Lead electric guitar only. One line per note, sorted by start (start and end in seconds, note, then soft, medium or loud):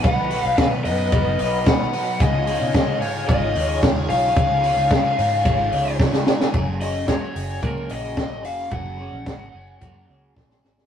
0.04 0.45 F#5 loud
0.45 0.57 F5 loud
0.58 0.65 F5 loud
0.85 1.69 D#5 loud
1.68 2.23 F#5 loud
2.21 3.01 D#5 loud
3.01 3.28 C#5 medium
3.28 3.79 D#5 medium
4.09 5.95 F5 loud
6.82 7.07 D#5 medium
7.09 7.65 C#5 medium
7.63 7.91 A#4 medium
7.91 8.47 D#5 medium
8.45 8.72 F5 medium
8.72 10.33 F#5 medium